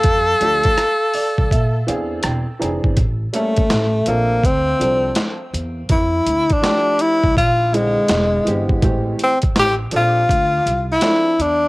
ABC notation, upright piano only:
X:1
M:4/4
L:1/8
Q:"Swing 16ths" 1/4=82
K:Am
V:1 name="Upright piano"
z [F,A,DG] z d e [E,CD^Gf] =g [E,^B,D^G_b] | z [G,_B,^CA] z [F,=CDA] z [F,CDA] z2 | z2 [F,A,DG] z2 [^C,D,^G,=CE]2 [E,G,^B,=G] | [E,A,CG] z2 [F,CDA] z2 [F,CDA] z |]